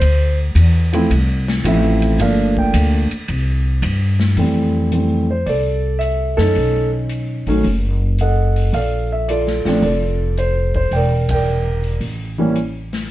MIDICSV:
0, 0, Header, 1, 5, 480
1, 0, Start_track
1, 0, Key_signature, -1, "major"
1, 0, Tempo, 545455
1, 11, Time_signature, 4, 2, 24, 8
1, 11536, End_track
2, 0, Start_track
2, 0, Title_t, "Grand piano"
2, 0, Program_c, 0, 0
2, 0, Note_on_c, 0, 72, 87
2, 320, Note_off_c, 0, 72, 0
2, 816, Note_on_c, 0, 53, 70
2, 825, Note_on_c, 0, 57, 70
2, 830, Note_on_c, 0, 60, 73
2, 832, Note_on_c, 0, 64, 82
2, 954, Note_off_c, 0, 53, 0
2, 959, Note_off_c, 0, 57, 0
2, 961, Note_off_c, 0, 60, 0
2, 962, Note_off_c, 0, 64, 0
2, 1449, Note_on_c, 0, 53, 69
2, 1452, Note_on_c, 0, 57, 54
2, 1454, Note_on_c, 0, 60, 62
2, 1462, Note_on_c, 0, 64, 70
2, 1478, Note_on_c, 0, 76, 81
2, 1912, Note_off_c, 0, 76, 0
2, 1916, Note_off_c, 0, 53, 0
2, 1918, Note_off_c, 0, 57, 0
2, 1929, Note_on_c, 0, 53, 59
2, 1931, Note_on_c, 0, 57, 54
2, 1932, Note_off_c, 0, 60, 0
2, 1936, Note_off_c, 0, 64, 0
2, 1939, Note_on_c, 0, 58, 62
2, 1942, Note_on_c, 0, 62, 69
2, 1947, Note_on_c, 0, 77, 70
2, 2257, Note_off_c, 0, 77, 0
2, 2275, Note_on_c, 0, 79, 82
2, 2672, Note_off_c, 0, 53, 0
2, 2673, Note_off_c, 0, 57, 0
2, 2677, Note_off_c, 0, 58, 0
2, 2678, Note_off_c, 0, 62, 0
2, 2713, Note_off_c, 0, 79, 0
2, 3845, Note_on_c, 0, 52, 54
2, 3852, Note_on_c, 0, 55, 46
2, 3857, Note_on_c, 0, 57, 50
2, 3860, Note_on_c, 0, 60, 59
2, 4309, Note_off_c, 0, 52, 0
2, 4315, Note_off_c, 0, 55, 0
2, 4318, Note_off_c, 0, 57, 0
2, 4319, Note_off_c, 0, 60, 0
2, 4322, Note_on_c, 0, 52, 46
2, 4330, Note_on_c, 0, 55, 41
2, 4333, Note_on_c, 0, 57, 46
2, 4339, Note_on_c, 0, 60, 53
2, 4621, Note_off_c, 0, 52, 0
2, 4624, Note_off_c, 0, 55, 0
2, 4626, Note_off_c, 0, 57, 0
2, 4629, Note_off_c, 0, 60, 0
2, 4669, Note_on_c, 0, 72, 64
2, 4808, Note_on_c, 0, 74, 80
2, 4819, Note_off_c, 0, 72, 0
2, 4833, Note_on_c, 0, 69, 54
2, 5254, Note_off_c, 0, 74, 0
2, 5270, Note_on_c, 0, 76, 83
2, 5583, Note_off_c, 0, 76, 0
2, 5593, Note_off_c, 0, 69, 0
2, 5606, Note_on_c, 0, 69, 92
2, 5637, Note_on_c, 0, 63, 59
2, 5638, Note_on_c, 0, 61, 50
2, 6057, Note_off_c, 0, 69, 0
2, 6551, Note_off_c, 0, 63, 0
2, 6552, Note_off_c, 0, 61, 0
2, 6576, Note_on_c, 0, 51, 61
2, 6581, Note_on_c, 0, 54, 57
2, 6585, Note_on_c, 0, 57, 60
2, 6588, Note_on_c, 0, 61, 73
2, 6713, Note_off_c, 0, 51, 0
2, 6715, Note_off_c, 0, 54, 0
2, 6717, Note_off_c, 0, 57, 0
2, 6719, Note_off_c, 0, 61, 0
2, 7224, Note_on_c, 0, 78, 73
2, 7225, Note_on_c, 0, 75, 52
2, 7229, Note_on_c, 0, 69, 56
2, 7664, Note_off_c, 0, 75, 0
2, 7666, Note_off_c, 0, 69, 0
2, 7693, Note_on_c, 0, 77, 82
2, 7703, Note_on_c, 0, 74, 48
2, 7706, Note_on_c, 0, 69, 49
2, 7711, Note_off_c, 0, 78, 0
2, 8029, Note_off_c, 0, 77, 0
2, 8029, Note_on_c, 0, 76, 68
2, 8157, Note_off_c, 0, 74, 0
2, 8165, Note_off_c, 0, 76, 0
2, 8170, Note_on_c, 0, 74, 81
2, 8171, Note_off_c, 0, 69, 0
2, 8183, Note_on_c, 0, 65, 59
2, 8184, Note_on_c, 0, 69, 58
2, 8493, Note_on_c, 0, 53, 68
2, 8503, Note_on_c, 0, 57, 68
2, 8505, Note_on_c, 0, 60, 58
2, 8510, Note_on_c, 0, 62, 72
2, 8616, Note_off_c, 0, 74, 0
2, 8632, Note_off_c, 0, 53, 0
2, 8637, Note_off_c, 0, 57, 0
2, 8638, Note_off_c, 0, 60, 0
2, 8641, Note_off_c, 0, 62, 0
2, 8646, Note_on_c, 0, 74, 73
2, 8650, Note_off_c, 0, 65, 0
2, 8656, Note_off_c, 0, 69, 0
2, 8663, Note_on_c, 0, 65, 49
2, 8669, Note_on_c, 0, 69, 56
2, 9139, Note_on_c, 0, 72, 75
2, 9143, Note_off_c, 0, 74, 0
2, 9440, Note_off_c, 0, 72, 0
2, 9466, Note_on_c, 0, 72, 79
2, 9582, Note_off_c, 0, 65, 0
2, 9585, Note_off_c, 0, 69, 0
2, 9604, Note_off_c, 0, 72, 0
2, 9617, Note_on_c, 0, 79, 76
2, 9633, Note_on_c, 0, 74, 65
2, 9641, Note_on_c, 0, 70, 59
2, 9919, Note_off_c, 0, 79, 0
2, 9949, Note_on_c, 0, 79, 73
2, 9955, Note_off_c, 0, 74, 0
2, 9959, Note_off_c, 0, 70, 0
2, 9968, Note_on_c, 0, 74, 51
2, 9973, Note_on_c, 0, 70, 61
2, 10392, Note_off_c, 0, 79, 0
2, 10552, Note_off_c, 0, 74, 0
2, 10554, Note_off_c, 0, 70, 0
2, 10896, Note_on_c, 0, 52, 68
2, 10903, Note_on_c, 0, 55, 64
2, 10906, Note_on_c, 0, 58, 53
2, 10910, Note_on_c, 0, 61, 71
2, 11036, Note_off_c, 0, 52, 0
2, 11039, Note_off_c, 0, 55, 0
2, 11041, Note_off_c, 0, 58, 0
2, 11043, Note_off_c, 0, 61, 0
2, 11536, End_track
3, 0, Start_track
3, 0, Title_t, "Upright bass"
3, 0, Program_c, 1, 32
3, 6, Note_on_c, 1, 38, 82
3, 474, Note_off_c, 1, 38, 0
3, 484, Note_on_c, 1, 40, 99
3, 953, Note_off_c, 1, 40, 0
3, 967, Note_on_c, 1, 36, 88
3, 1435, Note_off_c, 1, 36, 0
3, 1443, Note_on_c, 1, 33, 103
3, 1912, Note_off_c, 1, 33, 0
3, 1921, Note_on_c, 1, 31, 88
3, 2391, Note_off_c, 1, 31, 0
3, 2407, Note_on_c, 1, 38, 102
3, 2713, Note_off_c, 1, 38, 0
3, 2891, Note_on_c, 1, 36, 86
3, 3356, Note_off_c, 1, 36, 0
3, 3363, Note_on_c, 1, 43, 94
3, 3831, Note_off_c, 1, 43, 0
3, 3843, Note_on_c, 1, 41, 73
3, 4770, Note_off_c, 1, 41, 0
3, 4808, Note_on_c, 1, 36, 72
3, 5581, Note_off_c, 1, 36, 0
3, 5614, Note_on_c, 1, 42, 71
3, 5756, Note_off_c, 1, 42, 0
3, 5771, Note_on_c, 1, 35, 75
3, 6543, Note_off_c, 1, 35, 0
3, 6570, Note_on_c, 1, 33, 60
3, 6714, Note_off_c, 1, 33, 0
3, 6725, Note_on_c, 1, 30, 86
3, 7651, Note_off_c, 1, 30, 0
3, 7680, Note_on_c, 1, 34, 79
3, 8458, Note_off_c, 1, 34, 0
3, 8497, Note_on_c, 1, 33, 64
3, 8638, Note_off_c, 1, 33, 0
3, 8642, Note_on_c, 1, 29, 86
3, 9571, Note_off_c, 1, 29, 0
3, 9603, Note_on_c, 1, 28, 79
3, 10533, Note_off_c, 1, 28, 0
3, 10564, Note_on_c, 1, 33, 69
3, 11496, Note_off_c, 1, 33, 0
3, 11536, End_track
4, 0, Start_track
4, 0, Title_t, "Muted upright bass strokes"
4, 2743, Note_on_c, 9, 29, 36
4, 2831, Note_off_c, 9, 29, 0
4, 11536, End_track
5, 0, Start_track
5, 0, Title_t, "Drums"
5, 13, Note_on_c, 9, 51, 62
5, 101, Note_off_c, 9, 51, 0
5, 490, Note_on_c, 9, 44, 59
5, 490, Note_on_c, 9, 51, 66
5, 578, Note_off_c, 9, 44, 0
5, 578, Note_off_c, 9, 51, 0
5, 822, Note_on_c, 9, 51, 46
5, 910, Note_off_c, 9, 51, 0
5, 975, Note_on_c, 9, 51, 61
5, 1063, Note_off_c, 9, 51, 0
5, 1305, Note_on_c, 9, 38, 65
5, 1393, Note_off_c, 9, 38, 0
5, 1454, Note_on_c, 9, 44, 54
5, 1454, Note_on_c, 9, 51, 69
5, 1542, Note_off_c, 9, 44, 0
5, 1542, Note_off_c, 9, 51, 0
5, 1777, Note_on_c, 9, 51, 45
5, 1865, Note_off_c, 9, 51, 0
5, 1932, Note_on_c, 9, 51, 62
5, 2020, Note_off_c, 9, 51, 0
5, 2259, Note_on_c, 9, 36, 38
5, 2347, Note_off_c, 9, 36, 0
5, 2408, Note_on_c, 9, 44, 59
5, 2408, Note_on_c, 9, 51, 76
5, 2496, Note_off_c, 9, 44, 0
5, 2496, Note_off_c, 9, 51, 0
5, 2738, Note_on_c, 9, 51, 44
5, 2826, Note_off_c, 9, 51, 0
5, 2888, Note_on_c, 9, 51, 60
5, 2976, Note_off_c, 9, 51, 0
5, 3368, Note_on_c, 9, 44, 52
5, 3368, Note_on_c, 9, 51, 64
5, 3456, Note_off_c, 9, 44, 0
5, 3456, Note_off_c, 9, 51, 0
5, 3693, Note_on_c, 9, 38, 59
5, 3781, Note_off_c, 9, 38, 0
5, 3845, Note_on_c, 9, 46, 41
5, 3933, Note_off_c, 9, 46, 0
5, 4329, Note_on_c, 9, 42, 47
5, 4417, Note_off_c, 9, 42, 0
5, 4809, Note_on_c, 9, 46, 36
5, 4897, Note_off_c, 9, 46, 0
5, 5289, Note_on_c, 9, 42, 45
5, 5377, Note_off_c, 9, 42, 0
5, 5615, Note_on_c, 9, 38, 48
5, 5703, Note_off_c, 9, 38, 0
5, 5767, Note_on_c, 9, 46, 45
5, 5855, Note_off_c, 9, 46, 0
5, 6244, Note_on_c, 9, 42, 52
5, 6332, Note_off_c, 9, 42, 0
5, 6572, Note_on_c, 9, 46, 36
5, 6660, Note_off_c, 9, 46, 0
5, 6725, Note_on_c, 9, 46, 41
5, 6813, Note_off_c, 9, 46, 0
5, 7203, Note_on_c, 9, 42, 47
5, 7291, Note_off_c, 9, 42, 0
5, 7535, Note_on_c, 9, 46, 36
5, 7623, Note_off_c, 9, 46, 0
5, 7687, Note_on_c, 9, 46, 46
5, 7775, Note_off_c, 9, 46, 0
5, 8173, Note_on_c, 9, 42, 52
5, 8261, Note_off_c, 9, 42, 0
5, 8336, Note_on_c, 9, 38, 30
5, 8424, Note_off_c, 9, 38, 0
5, 8494, Note_on_c, 9, 38, 36
5, 8504, Note_on_c, 9, 46, 36
5, 8582, Note_off_c, 9, 38, 0
5, 8592, Note_off_c, 9, 46, 0
5, 8653, Note_on_c, 9, 46, 40
5, 8741, Note_off_c, 9, 46, 0
5, 9130, Note_on_c, 9, 42, 44
5, 9218, Note_off_c, 9, 42, 0
5, 9455, Note_on_c, 9, 46, 34
5, 9457, Note_on_c, 9, 36, 48
5, 9543, Note_off_c, 9, 46, 0
5, 9545, Note_off_c, 9, 36, 0
5, 9608, Note_on_c, 9, 46, 43
5, 9696, Note_off_c, 9, 46, 0
5, 9934, Note_on_c, 9, 51, 61
5, 9937, Note_on_c, 9, 36, 73
5, 10022, Note_off_c, 9, 51, 0
5, 10025, Note_off_c, 9, 36, 0
5, 10415, Note_on_c, 9, 46, 30
5, 10503, Note_off_c, 9, 46, 0
5, 10567, Note_on_c, 9, 46, 39
5, 10655, Note_off_c, 9, 46, 0
5, 11050, Note_on_c, 9, 42, 42
5, 11138, Note_off_c, 9, 42, 0
5, 11377, Note_on_c, 9, 46, 32
5, 11379, Note_on_c, 9, 38, 38
5, 11465, Note_off_c, 9, 46, 0
5, 11467, Note_off_c, 9, 38, 0
5, 11536, End_track
0, 0, End_of_file